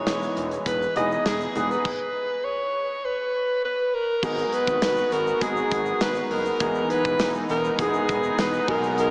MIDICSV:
0, 0, Header, 1, 6, 480
1, 0, Start_track
1, 0, Tempo, 594059
1, 1496, Time_signature, 4, 2, 24, 8
1, 7357, End_track
2, 0, Start_track
2, 0, Title_t, "Alto saxophone"
2, 0, Program_c, 0, 65
2, 0, Note_on_c, 0, 73, 91
2, 326, Note_off_c, 0, 73, 0
2, 541, Note_on_c, 0, 71, 95
2, 762, Note_off_c, 0, 71, 0
2, 780, Note_on_c, 0, 75, 103
2, 1002, Note_off_c, 0, 75, 0
2, 1017, Note_on_c, 0, 68, 90
2, 1378, Note_on_c, 0, 71, 92
2, 1390, Note_off_c, 0, 68, 0
2, 1975, Note_on_c, 0, 73, 98
2, 1987, Note_off_c, 0, 71, 0
2, 2463, Note_on_c, 0, 71, 87
2, 2475, Note_off_c, 0, 73, 0
2, 2940, Note_off_c, 0, 71, 0
2, 2947, Note_on_c, 0, 71, 100
2, 3186, Note_on_c, 0, 70, 99
2, 3198, Note_off_c, 0, 71, 0
2, 3421, Note_off_c, 0, 70, 0
2, 3426, Note_on_c, 0, 70, 102
2, 3662, Note_on_c, 0, 71, 112
2, 3675, Note_off_c, 0, 70, 0
2, 4142, Note_on_c, 0, 70, 107
2, 4154, Note_off_c, 0, 71, 0
2, 4384, Note_on_c, 0, 68, 104
2, 4396, Note_off_c, 0, 70, 0
2, 4855, Note_off_c, 0, 68, 0
2, 4860, Note_on_c, 0, 71, 101
2, 5098, Note_on_c, 0, 70, 111
2, 5110, Note_off_c, 0, 71, 0
2, 5575, Note_off_c, 0, 70, 0
2, 5580, Note_on_c, 0, 71, 110
2, 5928, Note_off_c, 0, 71, 0
2, 6062, Note_on_c, 0, 70, 105
2, 6302, Note_on_c, 0, 68, 100
2, 6314, Note_off_c, 0, 70, 0
2, 6785, Note_on_c, 0, 71, 96
2, 6797, Note_off_c, 0, 68, 0
2, 7021, Note_off_c, 0, 71, 0
2, 7027, Note_on_c, 0, 70, 102
2, 7245, Note_off_c, 0, 70, 0
2, 7270, Note_on_c, 0, 70, 103
2, 7357, Note_off_c, 0, 70, 0
2, 7357, End_track
3, 0, Start_track
3, 0, Title_t, "Analog synth pad"
3, 0, Program_c, 1, 89
3, 0, Note_on_c, 1, 52, 98
3, 0, Note_on_c, 1, 56, 77
3, 0, Note_on_c, 1, 59, 79
3, 0, Note_on_c, 1, 63, 82
3, 1464, Note_off_c, 1, 63, 0
3, 1466, Note_off_c, 1, 59, 0
3, 1476, Note_off_c, 1, 52, 0
3, 1477, Note_off_c, 1, 56, 0
3, 3418, Note_on_c, 1, 59, 83
3, 3418, Note_on_c, 1, 66, 104
3, 3420, Note_on_c, 1, 63, 87
3, 3421, Note_on_c, 1, 56, 86
3, 5318, Note_off_c, 1, 59, 0
3, 5318, Note_off_c, 1, 66, 0
3, 5340, Note_on_c, 1, 59, 84
3, 5341, Note_on_c, 1, 52, 99
3, 7002, Note_off_c, 1, 52, 0
3, 7026, Note_on_c, 1, 66, 98
3, 7357, Note_off_c, 1, 56, 0
3, 7357, Note_off_c, 1, 59, 0
3, 7357, Note_off_c, 1, 63, 0
3, 7357, Note_off_c, 1, 66, 0
3, 7357, End_track
4, 0, Start_track
4, 0, Title_t, "Grand piano"
4, 0, Program_c, 2, 0
4, 0, Control_c, 2, 64, 127
4, 0, Note_on_c, 2, 52, 69
4, 0, Note_on_c, 2, 59, 64
4, 0, Note_on_c, 2, 63, 64
4, 0, Note_on_c, 2, 68, 77
4, 184, Note_off_c, 2, 52, 0
4, 186, Note_off_c, 2, 59, 0
4, 186, Note_off_c, 2, 63, 0
4, 190, Note_off_c, 2, 68, 0
4, 772, Note_on_c, 2, 52, 72
4, 775, Note_on_c, 2, 59, 63
4, 779, Note_on_c, 2, 63, 67
4, 783, Note_on_c, 2, 68, 75
4, 1078, Note_off_c, 2, 52, 0
4, 1080, Note_off_c, 2, 59, 0
4, 1082, Note_off_c, 2, 63, 0
4, 1084, Note_off_c, 2, 68, 0
4, 1251, Note_on_c, 2, 52, 68
4, 1257, Note_on_c, 2, 59, 61
4, 1260, Note_on_c, 2, 63, 62
4, 1263, Note_on_c, 2, 68, 73
4, 1406, Note_off_c, 2, 52, 0
4, 1409, Note_off_c, 2, 59, 0
4, 1410, Note_off_c, 2, 63, 0
4, 1412, Note_off_c, 2, 68, 0
4, 1508, Control_c, 2, 64, 0
4, 3413, Note_on_c, 2, 54, 77
4, 3417, Note_on_c, 2, 56, 70
4, 3420, Note_on_c, 2, 59, 69
4, 3421, Note_on_c, 2, 63, 74
4, 3422, Note_on_c, 2, 68, 83
4, 3572, Control_c, 2, 64, 127
4, 4023, Note_off_c, 2, 54, 0
4, 4025, Note_off_c, 2, 56, 0
4, 4027, Note_off_c, 2, 59, 0
4, 4027, Note_off_c, 2, 63, 0
4, 4027, Note_off_c, 2, 68, 0
4, 4370, Note_on_c, 2, 54, 76
4, 4374, Note_on_c, 2, 56, 68
4, 4375, Note_on_c, 2, 59, 73
4, 4379, Note_on_c, 2, 63, 72
4, 4382, Note_on_c, 2, 68, 84
4, 4981, Note_off_c, 2, 54, 0
4, 4984, Note_off_c, 2, 56, 0
4, 4984, Note_off_c, 2, 59, 0
4, 4986, Note_off_c, 2, 63, 0
4, 4987, Note_off_c, 2, 68, 0
4, 5334, Note_on_c, 2, 52, 76
4, 5337, Note_on_c, 2, 56, 74
4, 5340, Note_on_c, 2, 59, 73
4, 5342, Note_on_c, 2, 63, 71
4, 5344, Note_on_c, 2, 68, 85
4, 5346, Control_c, 2, 64, 0
4, 5467, Control_c, 2, 64, 127
4, 5943, Note_off_c, 2, 52, 0
4, 5945, Note_off_c, 2, 56, 0
4, 5946, Note_off_c, 2, 59, 0
4, 5948, Note_off_c, 2, 63, 0
4, 5949, Note_off_c, 2, 68, 0
4, 6293, Note_on_c, 2, 52, 74
4, 6297, Note_on_c, 2, 56, 73
4, 6298, Note_on_c, 2, 59, 73
4, 6300, Note_on_c, 2, 63, 72
4, 6306, Note_on_c, 2, 68, 86
4, 6903, Note_off_c, 2, 52, 0
4, 6905, Note_off_c, 2, 56, 0
4, 6905, Note_off_c, 2, 59, 0
4, 6907, Note_off_c, 2, 63, 0
4, 6910, Note_off_c, 2, 68, 0
4, 7009, Note_on_c, 2, 54, 87
4, 7013, Note_on_c, 2, 56, 74
4, 7014, Note_on_c, 2, 58, 60
4, 7018, Note_on_c, 2, 63, 78
4, 7020, Note_on_c, 2, 68, 95
4, 7026, Control_c, 2, 64, 0
4, 7068, Note_off_c, 2, 58, 0
4, 7069, Note_on_c, 2, 59, 73
4, 7153, Control_c, 2, 64, 127
4, 7357, Note_off_c, 2, 54, 0
4, 7357, Note_off_c, 2, 56, 0
4, 7357, Note_off_c, 2, 59, 0
4, 7357, Note_off_c, 2, 63, 0
4, 7357, Note_off_c, 2, 68, 0
4, 7357, End_track
5, 0, Start_track
5, 0, Title_t, "Analog synth bass"
5, 0, Program_c, 3, 38
5, 54, Note_on_c, 3, 28, 103
5, 228, Note_off_c, 3, 28, 0
5, 298, Note_on_c, 3, 28, 106
5, 470, Note_off_c, 3, 28, 0
5, 533, Note_on_c, 3, 28, 102
5, 707, Note_off_c, 3, 28, 0
5, 777, Note_on_c, 3, 28, 107
5, 949, Note_off_c, 3, 28, 0
5, 1018, Note_on_c, 3, 28, 94
5, 1190, Note_off_c, 3, 28, 0
5, 1256, Note_on_c, 3, 28, 95
5, 1429, Note_off_c, 3, 28, 0
5, 3417, Note_on_c, 3, 32, 114
5, 3589, Note_off_c, 3, 32, 0
5, 3776, Note_on_c, 3, 32, 100
5, 3863, Note_off_c, 3, 32, 0
5, 3893, Note_on_c, 3, 32, 108
5, 4067, Note_off_c, 3, 32, 0
5, 4134, Note_on_c, 3, 32, 110
5, 4308, Note_off_c, 3, 32, 0
5, 4375, Note_on_c, 3, 32, 102
5, 4548, Note_off_c, 3, 32, 0
5, 4619, Note_on_c, 3, 32, 105
5, 4791, Note_off_c, 3, 32, 0
5, 4853, Note_on_c, 3, 32, 108
5, 5027, Note_off_c, 3, 32, 0
5, 5095, Note_on_c, 3, 30, 92
5, 5268, Note_off_c, 3, 30, 0
5, 5336, Note_on_c, 3, 28, 118
5, 5509, Note_off_c, 3, 28, 0
5, 5695, Note_on_c, 3, 28, 93
5, 5782, Note_off_c, 3, 28, 0
5, 5814, Note_on_c, 3, 28, 110
5, 5988, Note_off_c, 3, 28, 0
5, 6057, Note_on_c, 3, 28, 106
5, 6230, Note_off_c, 3, 28, 0
5, 6291, Note_on_c, 3, 28, 101
5, 6466, Note_off_c, 3, 28, 0
5, 6536, Note_on_c, 3, 28, 105
5, 6709, Note_off_c, 3, 28, 0
5, 6778, Note_on_c, 3, 28, 96
5, 6950, Note_off_c, 3, 28, 0
5, 7015, Note_on_c, 3, 35, 108
5, 7357, Note_off_c, 3, 35, 0
5, 7357, End_track
6, 0, Start_track
6, 0, Title_t, "Drums"
6, 53, Note_on_c, 9, 42, 100
6, 54, Note_on_c, 9, 38, 114
6, 60, Note_on_c, 9, 82, 74
6, 134, Note_off_c, 9, 42, 0
6, 135, Note_off_c, 9, 38, 0
6, 140, Note_off_c, 9, 82, 0
6, 179, Note_on_c, 9, 82, 46
6, 260, Note_off_c, 9, 82, 0
6, 297, Note_on_c, 9, 42, 69
6, 378, Note_off_c, 9, 42, 0
6, 414, Note_on_c, 9, 42, 53
6, 422, Note_on_c, 9, 82, 48
6, 495, Note_off_c, 9, 42, 0
6, 503, Note_off_c, 9, 82, 0
6, 533, Note_on_c, 9, 36, 88
6, 534, Note_on_c, 9, 42, 85
6, 539, Note_on_c, 9, 82, 66
6, 614, Note_off_c, 9, 36, 0
6, 614, Note_off_c, 9, 42, 0
6, 620, Note_off_c, 9, 82, 0
6, 663, Note_on_c, 9, 82, 48
6, 744, Note_off_c, 9, 82, 0
6, 773, Note_on_c, 9, 42, 71
6, 781, Note_on_c, 9, 82, 45
6, 854, Note_off_c, 9, 42, 0
6, 862, Note_off_c, 9, 82, 0
6, 902, Note_on_c, 9, 82, 43
6, 983, Note_off_c, 9, 82, 0
6, 1016, Note_on_c, 9, 38, 110
6, 1016, Note_on_c, 9, 42, 85
6, 1027, Note_on_c, 9, 82, 56
6, 1097, Note_off_c, 9, 38, 0
6, 1097, Note_off_c, 9, 42, 0
6, 1108, Note_off_c, 9, 82, 0
6, 1137, Note_on_c, 9, 82, 50
6, 1217, Note_off_c, 9, 82, 0
6, 1255, Note_on_c, 9, 42, 63
6, 1260, Note_on_c, 9, 82, 47
6, 1336, Note_off_c, 9, 42, 0
6, 1341, Note_off_c, 9, 82, 0
6, 1384, Note_on_c, 9, 82, 54
6, 1464, Note_off_c, 9, 82, 0
6, 1495, Note_on_c, 9, 36, 98
6, 1495, Note_on_c, 9, 49, 83
6, 1576, Note_off_c, 9, 36, 0
6, 1576, Note_off_c, 9, 49, 0
6, 3416, Note_on_c, 9, 36, 119
6, 3417, Note_on_c, 9, 49, 108
6, 3420, Note_on_c, 9, 82, 85
6, 3497, Note_off_c, 9, 36, 0
6, 3498, Note_off_c, 9, 49, 0
6, 3500, Note_off_c, 9, 82, 0
6, 3536, Note_on_c, 9, 82, 47
6, 3617, Note_off_c, 9, 82, 0
6, 3655, Note_on_c, 9, 42, 78
6, 3662, Note_on_c, 9, 82, 55
6, 3736, Note_off_c, 9, 42, 0
6, 3743, Note_off_c, 9, 82, 0
6, 3777, Note_on_c, 9, 36, 99
6, 3781, Note_on_c, 9, 82, 53
6, 3858, Note_off_c, 9, 36, 0
6, 3861, Note_off_c, 9, 82, 0
6, 3894, Note_on_c, 9, 42, 110
6, 3895, Note_on_c, 9, 38, 127
6, 3896, Note_on_c, 9, 54, 72
6, 3896, Note_on_c, 9, 82, 81
6, 3975, Note_off_c, 9, 42, 0
6, 3976, Note_off_c, 9, 38, 0
6, 3976, Note_off_c, 9, 54, 0
6, 3977, Note_off_c, 9, 82, 0
6, 4013, Note_on_c, 9, 82, 52
6, 4094, Note_off_c, 9, 82, 0
6, 4133, Note_on_c, 9, 82, 53
6, 4138, Note_on_c, 9, 42, 77
6, 4214, Note_off_c, 9, 82, 0
6, 4219, Note_off_c, 9, 42, 0
6, 4260, Note_on_c, 9, 82, 53
6, 4341, Note_off_c, 9, 82, 0
6, 4374, Note_on_c, 9, 36, 98
6, 4375, Note_on_c, 9, 82, 78
6, 4377, Note_on_c, 9, 42, 95
6, 4455, Note_off_c, 9, 36, 0
6, 4455, Note_off_c, 9, 82, 0
6, 4458, Note_off_c, 9, 42, 0
6, 4496, Note_on_c, 9, 82, 51
6, 4577, Note_off_c, 9, 82, 0
6, 4614, Note_on_c, 9, 82, 50
6, 4615, Note_on_c, 9, 42, 84
6, 4618, Note_on_c, 9, 36, 97
6, 4695, Note_off_c, 9, 82, 0
6, 4696, Note_off_c, 9, 42, 0
6, 4699, Note_off_c, 9, 36, 0
6, 4732, Note_on_c, 9, 82, 48
6, 4813, Note_off_c, 9, 82, 0
6, 4853, Note_on_c, 9, 54, 76
6, 4854, Note_on_c, 9, 82, 59
6, 4856, Note_on_c, 9, 38, 116
6, 4856, Note_on_c, 9, 42, 99
6, 4934, Note_off_c, 9, 54, 0
6, 4935, Note_off_c, 9, 82, 0
6, 4936, Note_off_c, 9, 38, 0
6, 4937, Note_off_c, 9, 42, 0
6, 4969, Note_on_c, 9, 82, 54
6, 5049, Note_off_c, 9, 82, 0
6, 5096, Note_on_c, 9, 46, 74
6, 5177, Note_off_c, 9, 46, 0
6, 5214, Note_on_c, 9, 82, 57
6, 5295, Note_off_c, 9, 82, 0
6, 5335, Note_on_c, 9, 82, 86
6, 5336, Note_on_c, 9, 36, 115
6, 5336, Note_on_c, 9, 42, 84
6, 5416, Note_off_c, 9, 82, 0
6, 5417, Note_off_c, 9, 36, 0
6, 5417, Note_off_c, 9, 42, 0
6, 5452, Note_on_c, 9, 82, 47
6, 5533, Note_off_c, 9, 82, 0
6, 5576, Note_on_c, 9, 42, 78
6, 5578, Note_on_c, 9, 82, 56
6, 5657, Note_off_c, 9, 42, 0
6, 5659, Note_off_c, 9, 82, 0
6, 5694, Note_on_c, 9, 82, 54
6, 5696, Note_on_c, 9, 36, 93
6, 5774, Note_off_c, 9, 82, 0
6, 5777, Note_off_c, 9, 36, 0
6, 5810, Note_on_c, 9, 82, 87
6, 5814, Note_on_c, 9, 42, 105
6, 5815, Note_on_c, 9, 38, 125
6, 5815, Note_on_c, 9, 54, 71
6, 5891, Note_off_c, 9, 82, 0
6, 5895, Note_off_c, 9, 38, 0
6, 5895, Note_off_c, 9, 42, 0
6, 5896, Note_off_c, 9, 54, 0
6, 5932, Note_on_c, 9, 82, 50
6, 6013, Note_off_c, 9, 82, 0
6, 6051, Note_on_c, 9, 82, 54
6, 6057, Note_on_c, 9, 42, 76
6, 6132, Note_off_c, 9, 82, 0
6, 6138, Note_off_c, 9, 42, 0
6, 6176, Note_on_c, 9, 82, 58
6, 6257, Note_off_c, 9, 82, 0
6, 6292, Note_on_c, 9, 36, 103
6, 6292, Note_on_c, 9, 42, 89
6, 6294, Note_on_c, 9, 82, 75
6, 6373, Note_off_c, 9, 36, 0
6, 6373, Note_off_c, 9, 42, 0
6, 6375, Note_off_c, 9, 82, 0
6, 6412, Note_on_c, 9, 82, 52
6, 6493, Note_off_c, 9, 82, 0
6, 6533, Note_on_c, 9, 42, 82
6, 6534, Note_on_c, 9, 82, 52
6, 6537, Note_on_c, 9, 36, 98
6, 6614, Note_off_c, 9, 42, 0
6, 6615, Note_off_c, 9, 82, 0
6, 6618, Note_off_c, 9, 36, 0
6, 6652, Note_on_c, 9, 82, 49
6, 6733, Note_off_c, 9, 82, 0
6, 6774, Note_on_c, 9, 54, 75
6, 6776, Note_on_c, 9, 38, 118
6, 6776, Note_on_c, 9, 42, 98
6, 6779, Note_on_c, 9, 82, 61
6, 6854, Note_off_c, 9, 54, 0
6, 6857, Note_off_c, 9, 38, 0
6, 6857, Note_off_c, 9, 42, 0
6, 6860, Note_off_c, 9, 82, 0
6, 6892, Note_on_c, 9, 82, 58
6, 6973, Note_off_c, 9, 82, 0
6, 7015, Note_on_c, 9, 36, 118
6, 7016, Note_on_c, 9, 46, 71
6, 7096, Note_off_c, 9, 36, 0
6, 7097, Note_off_c, 9, 46, 0
6, 7137, Note_on_c, 9, 82, 58
6, 7218, Note_off_c, 9, 82, 0
6, 7255, Note_on_c, 9, 42, 87
6, 7258, Note_on_c, 9, 82, 83
6, 7335, Note_off_c, 9, 42, 0
6, 7339, Note_off_c, 9, 82, 0
6, 7357, End_track
0, 0, End_of_file